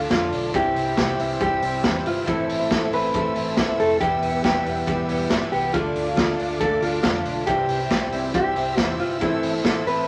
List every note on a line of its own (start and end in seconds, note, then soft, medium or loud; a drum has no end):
0.00 0.54 D3 medium
0.00 0.10 A3 medium
0.00 0.58 A3 medium
0.00 0.11 D4 medium
0.00 0.31 D4 medium
0.00 0.51 D4 medium
0.00 0.11 F4 medium
0.00 0.51 F4 medium
0.00 0.51 A4 medium
0.00 0.53 A4 medium
0.00 0.53 D5 medium
0.00 0.53 F5 medium
0.00 0.53 D6 medium
0.10 0.29 F2 medium
0.10 0.54 D3 medium
0.10 0.54 A3 medium
0.10 0.55 D4 medium
0.10 0.58 F4 medium
0.10 0.55 F4 medium
0.10 0.57 F4 medium
0.10 kick loud
0.10 snare loud
0.10 hi-hat pedal medium
0.10 ride medium
0.32 0.50 B1 loud
0.32 0.58 D4 medium
0.32 open hi-hat medium
0.54 0.72 C2 loud
0.54 0.86 C3 medium
0.54 2.27 C3 medium
0.54 0.87 E3 medium
0.54 0.87 G3 medium
0.54 3.97 C4 medium
0.54 2.24 C4 medium
0.54 0.86 C4 medium
0.54 2.24 E4 medium
0.54 0.85 E4 medium
0.54 2.24 G4 medium
0.54 1.37 G4 loud
0.54 5.70 E5 medium
0.54 2.26 G5 medium
0.54 2.26 E6 medium
0.54 kick loud
0.54 hi-hat pedal medium
0.54 ride medium
0.75 0.93 C2 loud
0.75 1.19 C4 medium
0.75 open hi-hat medium
0.86 1.17 G3 soft
0.86 1.18 C4 soft
0.86 1.19 E4 medium
0.97 1.15 C2 loud
0.97 1.40 G3 medium
0.97 kick loud
0.97 snare loud
0.97 hi-hat pedal medium
0.97 ride medium
1.18 1.37 C2 medium
1.18 1.61 E3 medium
1.18 1.61 G3 medium
1.18 1.63 C4 medium
1.18 1.62 C4 medium
1.18 1.63 E4 medium
1.18 open hi-hat medium
1.40 1.58 C2 medium
1.40 2.32 G3 medium
1.40 2.08 G4 loud
1.40 kick loud
1.40 hi-hat pedal medium
1.40 ride soft
1.61 1.80 C2 loud
1.61 1.81 E3 medium
1.61 1.82 G3 medium
1.61 1.83 C4 medium
1.61 2.05 C4 medium
1.61 1.83 E4 medium
1.61 open hi-hat medium
1.83 2.02 E2 medium
1.83 2.26 E3 medium
1.83 2.27 G3 medium
1.83 2.26 C4 medium
1.83 2.27 E4 medium
1.83 3.57 E4 medium
1.83 kick loud
1.83 snare loud
1.83 hi-hat pedal medium
1.83 ride medium
2.05 2.23 G1 medium
2.05 2.32 C4 medium
2.05 2.28 F4 medium
2.05 open hi-hat medium
2.26 2.45 A1 loud
2.26 2.59 A2 medium
2.26 4.00 A2 medium
2.26 2.59 E3 medium
2.26 2.60 A3 medium
2.26 2.59 C4 medium
2.26 3.97 C4 medium
2.26 2.58 E4 medium
2.26 3.97 E4 medium
2.26 2.95 E4 loud
2.26 3.98 A4 medium
2.26 3.99 A5 medium
2.26 5.70 E6 medium
2.26 kick loud
2.26 hi-hat pedal medium
2.26 ride medium
2.49 2.66 A1 medium
2.49 2.92 C4 medium
2.49 open hi-hat medium
2.59 2.92 A3 soft
2.59 2.92 C4 medium
2.59 2.92 E4 medium
2.71 2.88 A1 loud
2.71 3.14 A3 medium
2.71 kick loud
2.71 snare loud
2.71 hi-hat pedal medium
2.71 ride medium
2.92 3.10 A1 loud
2.92 3.34 E3 medium
2.92 3.35 A3 medium
2.92 3.35 C4 medium
2.92 3.37 E4 medium
2.92 3.76 B4 loud
2.92 open hi-hat medium
3.14 3.32 A1 loud
3.14 4.05 A3 medium
3.14 kick loud
3.14 hi-hat pedal medium
3.14 ride medium
3.35 3.58 A1 medium
3.35 3.55 E3 medium
3.35 3.56 A3 medium
3.35 3.78 C4 medium
3.35 3.56 C4 medium
3.35 3.57 E4 medium
3.35 open hi-hat medium
3.56 3.75 C2 medium
3.56 3.98 E3 medium
3.56 4.00 A3 medium
3.56 4.00 C4 medium
3.56 4.05 E4 medium
3.56 4.00 E4 medium
3.56 kick loud
3.56 snare loud
3.56 hi-hat pedal medium
3.56 ride medium
3.79 3.97 F1 loud
3.79 4.05 C4 medium
3.79 4.00 A4 loud
3.79 open hi-hat medium
4.00 4.18 E1 loud
4.00 5.74 E2 medium
4.00 4.33 E3 medium
4.00 4.33 G3 medium
4.00 5.71 B3 medium
4.00 4.31 B3 loud
4.00 5.71 E4 medium
4.00 4.30 E4 medium
4.00 4.43 G4 loud
4.00 5.71 G4 medium
4.00 5.72 B4 medium
4.00 5.72 G5 medium
4.00 kick loud
4.00 hi-hat pedal medium
4.00 ride medium
4.22 4.40 E1 medium
4.22 4.65 B3 medium
4.22 open hi-hat medium
4.32 4.64 G3 soft
4.32 4.64 B3 soft
4.32 4.65 E4 medium
4.44 4.62 E1 loud
4.44 4.87 G3 medium
4.44 5.27 G4 medium
4.44 kick loud
4.44 snare loud
4.44 hi-hat pedal medium
4.44 ride medium
4.64 4.83 E1 loud
4.64 5.07 E3 medium
4.64 5.07 G3 medium
4.64 5.08 B3 medium
4.64 5.08 E4 medium
4.64 open hi-hat medium
4.87 5.05 E1 medium
4.87 5.79 G3 medium
4.87 kick loud
4.87 hi-hat pedal medium
4.87 ride soft
5.08 5.27 E1 medium
5.08 5.29 E3 medium
5.08 5.29 G3 medium
5.08 5.30 B3 medium
5.08 5.51 B3 medium
5.08 5.31 E4 medium
5.08 open hi-hat medium
5.30 5.49 G1 medium
5.30 5.73 E3 medium
5.30 5.74 G3 medium
5.30 5.74 B3 medium
5.30 5.78 E4 medium
5.30 5.74 E4 medium
5.30 kick loud
5.30 snare loud
5.30 hi-hat pedal medium
5.30 ride medium
5.52 5.70 C2 loud
5.52 5.78 B3 medium
5.52 5.72 G4 medium
5.52 open hi-hat medium
5.73 5.92 D2 loud
5.73 6.06 D3 medium
5.73 7.47 D3 medium
5.73 6.06 A3 medium
5.73 6.06 D4 medium
5.73 7.44 D4 medium
5.73 6.15 F4 medium
5.73 7.44 F4 medium
5.73 6.05 F4 medium
5.73 7.46 A4 medium
5.73 7.44 A4 medium
5.73 7.46 D5 medium
5.73 7.46 F5 medium
5.73 7.46 D6 medium
5.73 kick loud
5.73 hi-hat pedal medium
5.73 ride medium
5.95 6.13 D2 medium
5.95 6.37 D4 medium
5.95 open hi-hat medium
6.06 6.38 A3 soft
6.06 6.39 D4 soft
6.06 6.39 F4 medium
6.17 6.35 D2 loud
6.17 6.59 A3 medium
6.17 6.62 F4 medium
6.17 kick loud
6.17 snare loud
6.17 hi-hat pedal medium
6.17 ride medium
6.38 6.57 D2 medium
6.38 6.81 D3 medium
6.38 6.82 A3 medium
6.38 6.81 D4 medium
6.38 6.83 D4 medium
6.38 6.83 F4 medium
6.38 open hi-hat medium
6.60 6.78 D2 medium
6.60 7.52 A3 medium
6.60 6.83 A4 loud
6.60 kick loud
6.60 hi-hat pedal medium
6.60 ride medium
6.82 7.00 D2 medium
6.82 7.03 D3 medium
6.82 7.03 A3 medium
6.82 7.25 D4 medium
6.82 7.04 D4 medium
6.82 7.02 F4 medium
6.82 7.04 F4 medium
6.82 open hi-hat medium
7.03 7.22 F2 medium
7.03 7.47 D3 medium
7.03 7.47 A3 medium
7.03 7.48 D4 medium
7.03 7.48 F4 medium
7.03 7.52 F4 medium
7.03 7.48 F4 medium
7.03 kick loud
7.03 snare loud
7.03 hi-hat pedal medium
7.03 ride medium
7.25 7.43 B1 loud
7.25 7.52 D4 medium
7.25 open hi-hat medium
7.47 7.65 C2 medium
7.47 7.80 C3 medium
7.47 9.21 C3 medium
7.47 7.80 E3 medium
7.47 7.80 G3 medium
7.47 10.08 C4 medium
7.47 9.18 C4 medium
7.47 7.80 C4 medium
7.47 9.18 E4 medium
7.47 7.78 E4 medium
7.47 8.33 G4 medium
7.47 9.18 G4 medium
7.47 10.08 E5 medium
7.47 9.19 G5 medium
7.47 10.08 E6 medium
7.47 kick loud
7.47 hi-hat pedal medium
7.47 ride medium
7.68 7.86 C2 loud
7.68 8.13 C4 medium
7.68 open hi-hat medium
7.80 8.11 G3 soft
7.80 8.12 C4 medium
7.80 8.12 E4 medium
7.90 8.09 C2 loud
7.90 8.33 G3 medium
7.90 kick loud
7.90 snare loud
7.90 hi-hat pedal medium
7.90 ride medium
8.12 8.30 C2 medium
8.12 8.55 E3 medium
8.12 8.55 G3 medium
8.12 8.55 C4 medium
8.12 8.56 C4 medium
8.12 8.57 E4 medium
8.12 open hi-hat medium
8.34 8.52 C2 loud
8.34 9.25 G3 medium
8.34 8.81 G4 medium
8.34 kick loud
8.34 hi-hat pedal medium
8.34 ride soft
8.55 8.74 C2 loud
8.55 8.76 E3 medium
8.55 8.77 G3 medium
8.55 8.98 C4 medium
8.55 8.77 C4 medium
8.55 8.78 E4 medium
8.55 open hi-hat medium
8.77 8.96 E2 medium
8.77 9.21 E3 medium
8.77 9.21 G3 medium
8.77 9.21 C4 medium
8.77 10.08 E4 medium
8.77 9.22 E4 medium
8.77 8.96 F4 medium
8.77 kick loud
8.77 snare loud
8.77 hi-hat pedal medium
8.77 ride medium
8.99 9.17 G1 loud
8.99 9.26 C4 medium
8.99 9.20 F4 medium
8.99 open hi-hat medium
9.21 9.39 A1 loud
9.21 9.54 A2 medium
9.21 10.08 A2 medium
9.21 9.54 E3 medium
9.21 9.54 A3 medium
9.21 10.08 C4 medium
9.21 9.53 C4 loud
9.21 10.08 E4 medium
9.21 9.83 E4 loud
9.21 9.52 E4 medium
9.21 10.08 A4 medium
9.21 10.08 A5 medium
9.21 kick loud
9.21 hi-hat pedal medium
9.21 ride medium
9.43 9.61 A1 medium
9.43 9.85 C4 medium
9.43 open hi-hat medium
9.53 9.86 A3 soft
9.53 9.87 C4 soft
9.53 9.86 E4 medium
9.64 9.83 A1 loud
9.64 10.07 A3 medium
9.64 kick loud
9.64 snare loud
9.64 hi-hat pedal medium
9.64 ride medium
9.86 10.04 A1 medium
9.86 10.08 E3 medium
9.86 10.08 A3 medium
9.86 10.08 C4 medium
9.86 10.08 E4 medium
9.86 10.08 B4 loud
9.86 open hi-hat medium